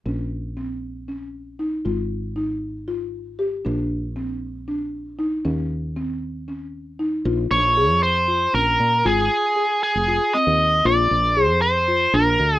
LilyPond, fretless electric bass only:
\new Staff \with { instrumentName = "Fretless electric bass" } { \clef bass \time 7/8 \key bes \dorian \tempo 4 = 117 bes,,2.~ bes,,8 | aes,,2.~ aes,,8 | bes,,2.~ bes,,8 | ees,2.~ ees,8 |
bes,,8 bes,,8. f,4~ f,16 bes,,8 bes,8 | aes,,8 r4 r16 f,,8 r8 ees,8. | bes,,8 bes,,8. f,4~ f,16 bes,,8 d,8 | }